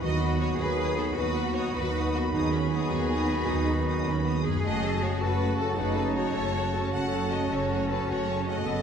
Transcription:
Already playing: harp D#3 B3 F#4 B4
0.01 double bass section D#2, trombone section D#3 F#3, french horn section B3 B4, viola section D#4 F#4, clarinet F#4, cello section F#4, violin section D#5 D#6, flute B5
0.22 viola section B3 D#4, violin section B5
0.40 viola section D#4 F#4, violin section C#5 D#6
0.57 double bass section D#2, trombone section D#3 F#3, viola section B3 D#4, french horn section B3 B4, clarinet F#4, cello section G#4, violin section B4 B5, flute B5
0.78 viola section D#4 F#4, violin section D#6
0.98 viola section B3 D#4, violin section A4 B5
1.16 double bass section D#2, trombone section D#3 F#3, french horn section B3 B4, viola section D#4 F#4, clarinet F#4, cello section F#4, violin section B4 D#6, flute B5
1.36 viola section B3 D#4, violin section B5
1.55 viola section D#4 F#4, violin section C#5 D#6
1.74 double bass section D#2, trombone section D#3 F#3, french horn section B3 B4, viola section B3 D#4, clarinet F#4, violin section B4 B5, flute B5
1.95 viola section D#4 F#4, violin section D#6
2.14 viola section B3 D#4, violin section F#4 B5
2.33 double bass section D#2, viola section D#4 F#4, cello section D#4, violin section G#4 D#6
2.53 viola section B3 D#4, cello section C#4, violin section B5
2.72 cello section B3, viola section D#4 F#4, violin section D#6
2.91 double bass section D#2, viola section B3 D#4, violin section B5
3.10 viola section D#4 F#4, violin section D#6
3.30 viola section B3 D#4, violin section B5
3.49 double bass section D#2, viola section D#4 F#4, cello section D#4, violin section D#6
3.68 viola section B3 D#4, violin section B5
3.88 viola section D#4 F#4, violin section D#6
4.07 double bass section D#2, viola section B3 D#4, cello section C#4, violin section B5
4.26 cello section B3, viola section D#4 F#4, violin section D#6
4.45 harp F#2, viola section B3 D#4, cello section G#4, violin section B5
4.50 harp C#4
4.55 harp F#4
4.59 harp A3
4.64 double bass section F#1, trombone section C#3 F#3, french horn section A3 C#4, viola section A3 F#4, clarinet F#4, violin section D#5 F#5, flute A5
4.83 viola section C#4 A4, violin section A5
5.01 viola section A3 F#4, violin section C#5 F#5
5.20 double bass section F#1, viola section C#4 A4, cello section F#4, violin section B4 A5
5.39 viola section A3 F#4, violin section F#5
5.59 viola section C#4 A4, violin section A4 A5
5.77 double bass section F#1, viola section A3 F#4, cello section D#4, violin section B4 F#5
5.97 viola section C#4 A4, violin section A5
6.15 viola section A3 F#4, violin section C#5 F#5
6.35 double bass section F#1, viola section C#4 A4, cello section C#4, violin section A5
6.55 cello section A3, viola section A3 F#4, violin section F#5
6.73 viola section C#4 A4, cello section C#4, violin section A5
6.93 double bass section F#1, trombone section C#3 F#3, viola section A3 F#4, french horn section C#4 A4, violin section F#5
7.12 viola section C#4 A4, violin section A5
7.32 viola section A3 F#4, violin section D#5 F#5
7.50 double bass section F#1, trombone section C#3 F#3, french horn section C#4 A4, viola section C#4 A4, violin section C#5 A5
7.70 viola section A3 F#4, violin section F#5
7.90 viola section C#4 A4, violin section B4 A5
8.07 double bass section F#1, trombone section C#3 F#3, viola section A3 F#4, french horn section C#4 A4, violin section C#5 F#5
8.28 viola section C#4 A4, violin section A5
8.47 viola section A3 F#4, violin section D#5 F#5
8.65 double bass section F#1, cello section B3, viola section C#4 A4, violin section A5

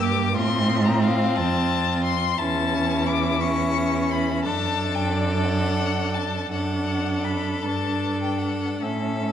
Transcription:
Already playing: cello G2, viola A#3, violin G4
0.03 violin D6
0.34 cello A2, viola C4, violin F4 C6
0.85 violin A#5
1.02 violin F5
1.36 cello F2, violin A5
2.04 violin C6
2.38 cello E2, viola C#4, violin E4 A5
3.07 violin D6
3.41 viola C#4, violin C#6
4.11 violin B5
4.44 cello F#2, viola D4, violin A4 A5
4.95 violin G5
5.11 violin D5
5.44 violin F#5
6.14 violin A5
6.51 cello F#2, viola D4, violin A4 F#5
7.25 violin B5
7.63 cello G2, viola D4, violin A5
8.22 violin G5
8.38 violin F#5
8.82 cello A2, viola C#4, violin A4 E5

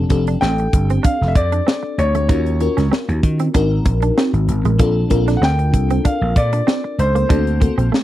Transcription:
Already playing: fm electric piano C4 D4 G4 A4
0.10 slap bass F1, fm electric piano C4 D4 G4 A4, muted clean electric guitar stroke, kick, closed hi-hat
0.27 clean electric guitar D4, closed hi-hat
0.41 slap bass A1, clean electric guitar C4, grand piano G5, snare
0.58 muted clean electric guitar stroke, closed hi-hat
0.73 slap bass G1, kick, closed hi-hat
0.90 clean electric guitar C4, closed hi-hat
1.03 clean electric guitar D4, grand piano F5, kick, closed hi-hat
1.21 slap bass F1, snare
1.28 grand piano E5
1.35 slap bass F2, grand piano D5, muted clean electric guitar stroke, kick, closed hi-hat
1.52 clean electric guitar D4, closed hi-hat
1.67 clean electric guitar C4, snare
1.83 muted clean electric guitar stroke
1.98 slap bass D2, grand piano C#5, closed hi-hat
2.15 clean electric guitar A3, closed hi-hat
2.29 slap bass D#2, fm electric piano C#4 F4 F#4 A#4, clean electric guitar D#4, kick, closed hi-hat
2.46 closed hi-hat
2.60 fm electric piano C#4 F4 F#4 A#4, muted clean electric guitar stroke, closed hi-hat
2.77 slap bass C#2, clean electric guitar C#4, snare, closed hi-hat
2.92 clean electric guitar C4, snare
3.09 slap bass D#2, muted clean electric guitar stroke, closed hi-hat
3.23 slap bass D#3, kick, closed hi-hat
3.39 clean electric guitar C4, closed hi-hat
3.54 slap bass G#1, fm electric piano C4 D#4 F#4 A#4, clean electric guitar D4, kick, closed hi-hat
3.85 slap bass A#1, muted clean electric guitar stroke, kick, closed hi-hat
4.02 clean electric guitar D4, closed hi-hat
4.18 clean electric guitar C4, snare
4.33 slap bass G#1, muted clean electric guitar stroke, closed hi-hat
4.48 slap bass G#1, closed hi-hat
4.65 slap bass A1, clean electric guitar G#3, closed hi-hat
4.78 slap bass A#1, clean electric guitar A#3, fm electric piano C4 D4 F4 A4, kick, closed hi-hat
5.10 slap bass A#1, fm electric piano C4 D4 F4 A#4, muted clean electric guitar stroke, kick, closed hi-hat
5.28 clean electric guitar D4, snare, closed hi-hat
5.37 grand piano F#5
5.41 slap bass D2, clean electric guitar C4, grand piano G5, snare
5.59 muted clean electric guitar stroke, closed hi-hat
5.74 slap bass C2, kick, closed hi-hat
5.90 clean electric guitar C4, closed hi-hat
6.05 clean electric guitar D4, grand piano F5, kick, closed hi-hat
6.21 slap bass A#1
6.36 slap bass A#2, grand piano D5, muted clean electric guitar stroke, kick, closed hi-hat
6.53 clean electric guitar D4, closed hi-hat
6.67 clean electric guitar C4, snare
6.84 muted clean electric guitar stroke
6.98 slap bass C#2, grand piano C5, closed hi-hat
7.15 clean electric guitar A#3, closed hi-hat
7.29 slap bass D2, fm electric piano A#3 C4 F#4 A4, clean electric guitar D4, kick, closed hi-hat
7.47 closed hi-hat
7.60 fm electric piano A#3 C4 F#4 A4, muted clean electric guitar stroke, kick, closed hi-hat
7.78 slap bass A#1, clean electric guitar C4, closed hi-hat
7.92 clean electric guitar A3, snare

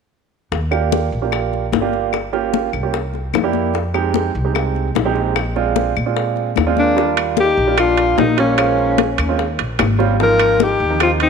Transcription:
0.52 upright bass D#2, high bongo, high conga
0.71 grand piano A#3 D4 F4 G4, high bongo, high conga, claves
0.92 high bongo, high conga
1.12 upright bass A#1
1.22 grand piano A#3 D4 F4 G4
1.32 high bongo, high conga, claves
1.53 high bongo, high conga
1.72 upright bass G1, high bongo, low bongo, high conga
1.81 grand piano A#3 D4 F4 G4
1.93 high bongo, high conga
2.13 high bongo, high conga, claves
2.33 grand piano A#3 C#4 F4 G4, high conga
2.54 high bongo, high conga
2.73 upright bass C2, high bongo, high conga, claves
2.83 grand piano A#3 C#4 F4 G4
2.94 high bongo, high conga
3.13 high bongo, high conga
3.34 upright bass F2, high bongo, low bongo, high conga, claves
3.43 grand piano A#3 D4 E4 G4
3.53 high bongo, high conga
3.74 high bongo, high conga
3.94 grand piano G#3 C4 D#4 G4, high bongo, high conga, claves
4.14 high bongo, high conga
4.35 upright bass C2
4.44 grand piano G#3 C4 D#4 G4
4.55 high bongo, high conga, claves
4.75 high bongo, high conga
4.95 upright bass A#1, high bongo, low bongo, high conga
5.05 grand piano G#3 C4 D#4 G4
5.16 high bongo, high conga
5.36 high bongo, high conga, claves
5.56 grand piano G#3 C4 D4 F4, high conga
5.76 high bongo, high conga
5.96 upright bass A#2, high bongo, high conga, claves
6.06 grand piano G#3 C4 D4 F4
6.16 high bongo, high conga
6.36 high bongo, high conga
6.56 upright bass D#2, high bongo, low bongo, high conga, claves
6.67 grand piano G#3 C4 D4 F4
6.77 trombone A#3, alto saxophone D4, high bongo, high conga
6.96 grand piano G3 A#3 D4 F4, high bongo, high conga
7.17 high bongo, high conga, high timbale, claves
7.37 trombone D#4, alto saxophone G4, high bongo, high conga
7.57 upright bass A#1
7.67 grand piano G3 A#3 D4 F4
7.78 trombone D4, alto saxophone F4, high bongo, high conga, high timbale, claves
7.97 high bongo, high conga, high timbale
8.18 upright bass A#1, trombone A#3, alto saxophone D#4, high bongo, low bongo, high conga, low timbale
8.37 grand piano G3 A#3 D4 F4, trombone A#3, alto saxophone C#4, high bongo, high conga, high timbale
8.58 grand piano G#3 C#4 F4 C5, high bongo, high conga, high timbale, claves
8.79 high conga
8.98 high bongo, high conga, high timbale
9.18 upright bass D#2, high bongo, high conga, high timbale, claves
9.29 grand piano G#3 C4 C#4 F4
9.39 high bongo, high conga
9.59 upright bass A#1, high bongo, high conga, high timbale
9.79 upright bass G#1, high bongo, low bongo, high conga, high timbale, low timbale, claves
9.99 grand piano G3 C4 C#4 F4, high bongo, high conga
10.20 grand piano F3 A#3 C4 D#4, trombone F4, alto saxophone A#4, high bongo, high conga
10.39 high bongo, high conga, high timbale, claves
10.60 trombone D#4, alto saxophone G4, high bongo, high conga
10.80 upright bass D#2
10.90 grand piano F3 A#3 C4 D#4
11.00 trombone C4, alto saxophone F4, high bongo, high conga, high timbale, claves
11.20 trombone C4, alto saxophone D#4, high bongo, high conga, high timbale

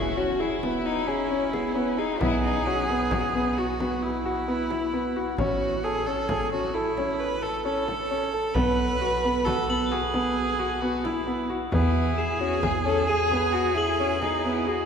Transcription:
Already playing: fm bass E1, violin E4, viola F#4, grand piano G#4
0.17 grand piano C#4, violin F#4
0.40 viola E4, violin E4, grand piano G#4
0.63 grand piano B3, frame drum
0.86 violin D#4
1.07 violin C#4, grand piano G#4
1.31 grand piano C#4
1.53 violin B3, grand piano G#4, frame drum
1.75 grand piano B3, violin C#4
1.99 violin D#4, grand piano G#4, frame drum
2.20 fm bass B1, grand piano B3, violin E4, viola G#4, frame drum
2.44 violin D#4
2.66 violin C#4, grand piano F#4
2.89 grand piano B3, violin B3, frame drum
3.11 grand piano F#4, frame drum
3.35 grand piano B3
3.58 grand piano F#4, viola F#4
3.80 grand piano B3, frame drum
4.03 viola E4
4.25 grand piano F#4
4.48 grand piano B3
4.71 grand piano E4, frame drum
4.93 grand piano B3
5.16 grand piano F#4, frame drum
5.38 fm bass A1, grand piano C#4, viola F#4, frame drum
5.84 viola G#4, grand piano A4
6.06 grand piano C#4, viola A4, frame drum
6.29 viola G#4, grand piano A4, frame drum
6.52 grand piano C#4, viola F#4
6.74 viola E4, grand piano A4
6.98 grand piano C#4, frame drum
7.19 viola B4
7.42 viola A4, grand piano A4
7.65 grand piano C#4, viola A4
7.88 grand piano A4, frame drum
8.11 grand piano C#4
8.33 grand piano A4, frame drum
8.54 fm bass B1, grand piano B3, viola B4, frame drum
9.01 grand piano F#4
9.24 grand piano B3, frame drum
9.45 grand piano F#4, viola A4, frame drum
9.69 grand piano B3, crotales F#7
9.86 crotales A7
9.91 grand piano F#4, viola G#4, frame drum
10.14 grand piano B3, frame drum
10.36 frame drum
10.59 grand piano F#4, frame drum
10.81 grand piano B3, viola F#4
11.04 grand piano E4, viola E4, frame drum
11.27 grand piano B3, frame drum
11.50 grand piano F#4, frame drum
11.72 fm bass E2, grand piano B3, violin E4, viola G#4, frame drum
12.18 grand piano G#4, crotales E7
12.40 grand piano C#4, violin F#4, frame drum
12.62 violin G#4, grand piano G#4, frame drum
12.84 grand piano C#4, violin A4
13.08 violin G#4, grand piano G#4, crotales D#7
13.31 grand piano B3, frame drum
13.53 violin F#4
13.75 violin E4, grand piano G#4, crotales F#7
14.00 grand piano C#4
14.22 violin D#4, grand piano G#4, frame drum
14.44 grand piano B3, violin E4
14.67 violin F#4, grand piano G#4, frame drum

